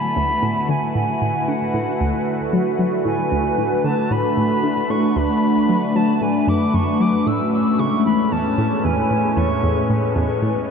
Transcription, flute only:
0, 0, Header, 1, 2, 480
1, 0, Start_track
1, 0, Tempo, 526316
1, 868, Time_signature, 4, 2, 24, 8
1, 9765, End_track
2, 0, Start_track
2, 0, Title_t, "Flute"
2, 0, Program_c, 0, 73
2, 0, Note_on_c, 0, 83, 117
2, 628, Note_off_c, 0, 83, 0
2, 633, Note_on_c, 0, 80, 90
2, 854, Note_off_c, 0, 80, 0
2, 871, Note_on_c, 0, 80, 97
2, 1350, Note_on_c, 0, 78, 81
2, 1364, Note_off_c, 0, 80, 0
2, 2309, Note_off_c, 0, 78, 0
2, 2789, Note_on_c, 0, 80, 90
2, 3508, Note_on_c, 0, 81, 87
2, 3522, Note_off_c, 0, 80, 0
2, 3754, Note_on_c, 0, 83, 96
2, 3768, Note_off_c, 0, 81, 0
2, 4469, Note_on_c, 0, 85, 94
2, 4483, Note_off_c, 0, 83, 0
2, 4715, Note_on_c, 0, 83, 98
2, 4729, Note_off_c, 0, 85, 0
2, 5433, Note_on_c, 0, 81, 90
2, 5446, Note_off_c, 0, 83, 0
2, 5671, Note_on_c, 0, 80, 96
2, 5685, Note_off_c, 0, 81, 0
2, 5912, Note_on_c, 0, 86, 97
2, 5925, Note_off_c, 0, 80, 0
2, 6147, Note_on_c, 0, 85, 99
2, 6161, Note_off_c, 0, 86, 0
2, 6392, Note_on_c, 0, 86, 98
2, 6406, Note_off_c, 0, 85, 0
2, 6629, Note_on_c, 0, 88, 109
2, 6643, Note_off_c, 0, 86, 0
2, 6860, Note_off_c, 0, 88, 0
2, 6865, Note_on_c, 0, 88, 102
2, 7104, Note_on_c, 0, 85, 104
2, 7118, Note_off_c, 0, 88, 0
2, 7341, Note_off_c, 0, 85, 0
2, 7346, Note_on_c, 0, 83, 94
2, 7586, Note_on_c, 0, 81, 97
2, 7600, Note_off_c, 0, 83, 0
2, 8067, Note_on_c, 0, 80, 94
2, 8080, Note_off_c, 0, 81, 0
2, 8544, Note_on_c, 0, 85, 95
2, 8558, Note_off_c, 0, 80, 0
2, 9026, Note_off_c, 0, 85, 0
2, 9765, End_track
0, 0, End_of_file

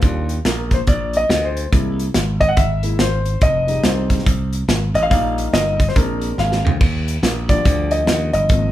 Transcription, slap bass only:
0, 0, Header, 1, 2, 480
1, 0, Start_track
1, 0, Key_signature, -3, "major"
1, 0, Tempo, 423729
1, 34, Time_signature, 4, 2, 24, 8
1, 9877, End_track
2, 0, Start_track
2, 0, Title_t, "Slap bass"
2, 0, Program_c, 0, 36
2, 27, Note_on_c, 0, 39, 97
2, 438, Note_off_c, 0, 39, 0
2, 511, Note_on_c, 0, 34, 87
2, 920, Note_off_c, 0, 34, 0
2, 989, Note_on_c, 0, 34, 90
2, 1399, Note_off_c, 0, 34, 0
2, 1464, Note_on_c, 0, 38, 90
2, 1876, Note_off_c, 0, 38, 0
2, 1954, Note_on_c, 0, 36, 101
2, 2362, Note_off_c, 0, 36, 0
2, 2431, Note_on_c, 0, 32, 85
2, 2840, Note_off_c, 0, 32, 0
2, 2911, Note_on_c, 0, 32, 83
2, 3320, Note_off_c, 0, 32, 0
2, 3389, Note_on_c, 0, 32, 79
2, 3799, Note_off_c, 0, 32, 0
2, 3871, Note_on_c, 0, 29, 104
2, 4280, Note_off_c, 0, 29, 0
2, 4348, Note_on_c, 0, 36, 85
2, 4759, Note_off_c, 0, 36, 0
2, 4833, Note_on_c, 0, 36, 75
2, 5241, Note_off_c, 0, 36, 0
2, 5300, Note_on_c, 0, 32, 75
2, 5558, Note_off_c, 0, 32, 0
2, 5596, Note_on_c, 0, 33, 82
2, 5758, Note_off_c, 0, 33, 0
2, 5791, Note_on_c, 0, 34, 88
2, 6200, Note_off_c, 0, 34, 0
2, 6264, Note_on_c, 0, 31, 81
2, 6676, Note_off_c, 0, 31, 0
2, 6749, Note_on_c, 0, 34, 85
2, 7159, Note_off_c, 0, 34, 0
2, 7229, Note_on_c, 0, 32, 83
2, 7483, Note_off_c, 0, 32, 0
2, 7527, Note_on_c, 0, 38, 84
2, 7684, Note_off_c, 0, 38, 0
2, 7714, Note_on_c, 0, 39, 103
2, 8121, Note_off_c, 0, 39, 0
2, 8184, Note_on_c, 0, 34, 93
2, 8596, Note_off_c, 0, 34, 0
2, 8672, Note_on_c, 0, 38, 71
2, 9080, Note_off_c, 0, 38, 0
2, 9152, Note_on_c, 0, 39, 79
2, 9405, Note_off_c, 0, 39, 0
2, 9444, Note_on_c, 0, 31, 87
2, 9602, Note_off_c, 0, 31, 0
2, 9627, Note_on_c, 0, 32, 100
2, 9877, Note_off_c, 0, 32, 0
2, 9877, End_track
0, 0, End_of_file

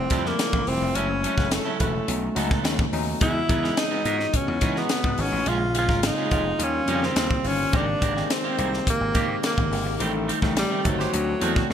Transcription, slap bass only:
0, 0, Header, 1, 2, 480
1, 0, Start_track
1, 0, Tempo, 565504
1, 809, Time_signature, 4, 2, 24, 8
1, 9958, End_track
2, 0, Start_track
2, 0, Title_t, "Slap bass"
2, 0, Program_c, 0, 36
2, 89, Note_on_c, 0, 41, 99
2, 259, Note_off_c, 0, 41, 0
2, 449, Note_on_c, 0, 33, 89
2, 534, Note_off_c, 0, 33, 0
2, 571, Note_on_c, 0, 28, 88
2, 655, Note_off_c, 0, 28, 0
2, 691, Note_on_c, 0, 29, 91
2, 775, Note_off_c, 0, 29, 0
2, 808, Note_on_c, 0, 30, 111
2, 1063, Note_off_c, 0, 30, 0
2, 1168, Note_on_c, 0, 30, 93
2, 1338, Note_off_c, 0, 30, 0
2, 1530, Note_on_c, 0, 28, 91
2, 1699, Note_off_c, 0, 28, 0
2, 1765, Note_on_c, 0, 35, 103
2, 1936, Note_off_c, 0, 35, 0
2, 2004, Note_on_c, 0, 37, 91
2, 2239, Note_off_c, 0, 37, 0
2, 2239, Note_on_c, 0, 39, 92
2, 2411, Note_off_c, 0, 39, 0
2, 2484, Note_on_c, 0, 39, 94
2, 2654, Note_off_c, 0, 39, 0
2, 2724, Note_on_c, 0, 40, 107
2, 2894, Note_off_c, 0, 40, 0
2, 2966, Note_on_c, 0, 40, 103
2, 3135, Note_off_c, 0, 40, 0
2, 3440, Note_on_c, 0, 44, 98
2, 3612, Note_off_c, 0, 44, 0
2, 3802, Note_on_c, 0, 40, 106
2, 3887, Note_off_c, 0, 40, 0
2, 3919, Note_on_c, 0, 52, 97
2, 4091, Note_off_c, 0, 52, 0
2, 4277, Note_on_c, 0, 44, 97
2, 4364, Note_off_c, 0, 44, 0
2, 4399, Note_on_c, 0, 32, 98
2, 4485, Note_off_c, 0, 32, 0
2, 4516, Note_on_c, 0, 33, 89
2, 4604, Note_off_c, 0, 33, 0
2, 4636, Note_on_c, 0, 34, 116
2, 4997, Note_off_c, 0, 34, 0
2, 4997, Note_on_c, 0, 32, 85
2, 5169, Note_off_c, 0, 32, 0
2, 5361, Note_on_c, 0, 29, 93
2, 5532, Note_off_c, 0, 29, 0
2, 5592, Note_on_c, 0, 39, 103
2, 5766, Note_off_c, 0, 39, 0
2, 5838, Note_on_c, 0, 41, 87
2, 6010, Note_off_c, 0, 41, 0
2, 6076, Note_on_c, 0, 39, 94
2, 6249, Note_off_c, 0, 39, 0
2, 6319, Note_on_c, 0, 31, 95
2, 6491, Note_off_c, 0, 31, 0
2, 6565, Note_on_c, 0, 32, 114
2, 6735, Note_off_c, 0, 32, 0
2, 6806, Note_on_c, 0, 32, 104
2, 6976, Note_off_c, 0, 32, 0
2, 7288, Note_on_c, 0, 36, 92
2, 7457, Note_off_c, 0, 36, 0
2, 7645, Note_on_c, 0, 32, 101
2, 7731, Note_off_c, 0, 32, 0
2, 7768, Note_on_c, 0, 44, 100
2, 7938, Note_off_c, 0, 44, 0
2, 8130, Note_on_c, 0, 32, 95
2, 8214, Note_off_c, 0, 32, 0
2, 8244, Note_on_c, 0, 31, 93
2, 8369, Note_off_c, 0, 31, 0
2, 8369, Note_on_c, 0, 32, 92
2, 8454, Note_off_c, 0, 32, 0
2, 8488, Note_on_c, 0, 33, 109
2, 8744, Note_off_c, 0, 33, 0
2, 8847, Note_on_c, 0, 33, 94
2, 9018, Note_off_c, 0, 33, 0
2, 9210, Note_on_c, 0, 31, 100
2, 9381, Note_off_c, 0, 31, 0
2, 9452, Note_on_c, 0, 38, 105
2, 9622, Note_off_c, 0, 38, 0
2, 9690, Note_on_c, 0, 40, 92
2, 9861, Note_off_c, 0, 40, 0
2, 9930, Note_on_c, 0, 38, 83
2, 9958, Note_off_c, 0, 38, 0
2, 9958, End_track
0, 0, End_of_file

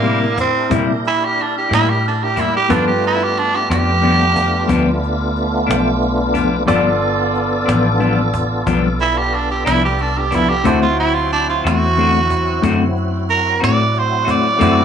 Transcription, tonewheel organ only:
0, 0, Header, 1, 2, 480
1, 0, Start_track
1, 0, Tempo, 662252
1, 1960, Time_signature, 12, 3, 24, 8
1, 10761, End_track
2, 0, Start_track
2, 0, Title_t, "Tonewheel organ"
2, 0, Program_c, 0, 16
2, 0, Note_on_c, 0, 62, 62
2, 0, Note_on_c, 0, 64, 62
2, 0, Note_on_c, 0, 67, 60
2, 0, Note_on_c, 0, 70, 57
2, 1927, Note_off_c, 0, 62, 0
2, 1929, Note_off_c, 0, 70, 0
2, 1931, Note_off_c, 0, 64, 0
2, 1931, Note_off_c, 0, 67, 0
2, 1950, Note_on_c, 0, 57, 65
2, 1950, Note_on_c, 0, 62, 61
2, 1952, Note_on_c, 0, 59, 61
2, 1953, Note_on_c, 0, 65, 63
2, 4809, Note_off_c, 0, 57, 0
2, 4809, Note_off_c, 0, 62, 0
2, 4810, Note_off_c, 0, 59, 0
2, 4810, Note_off_c, 0, 65, 0
2, 4848, Note_on_c, 0, 65, 62
2, 4848, Note_on_c, 0, 69, 63
2, 4850, Note_on_c, 0, 62, 65
2, 4851, Note_on_c, 0, 59, 63
2, 7695, Note_off_c, 0, 65, 0
2, 7695, Note_off_c, 0, 69, 0
2, 7696, Note_off_c, 0, 59, 0
2, 7696, Note_off_c, 0, 62, 0
2, 7726, Note_on_c, 0, 64, 57
2, 7730, Note_on_c, 0, 54, 59
2, 7731, Note_on_c, 0, 60, 63
2, 7731, Note_on_c, 0, 66, 64
2, 10567, Note_off_c, 0, 64, 0
2, 10568, Note_off_c, 0, 54, 0
2, 10569, Note_off_c, 0, 60, 0
2, 10569, Note_off_c, 0, 66, 0
2, 10585, Note_on_c, 0, 69, 63
2, 10588, Note_on_c, 0, 60, 63
2, 10589, Note_on_c, 0, 64, 64
2, 10589, Note_on_c, 0, 66, 64
2, 10761, Note_off_c, 0, 60, 0
2, 10761, Note_off_c, 0, 64, 0
2, 10761, Note_off_c, 0, 66, 0
2, 10761, Note_off_c, 0, 69, 0
2, 10761, End_track
0, 0, End_of_file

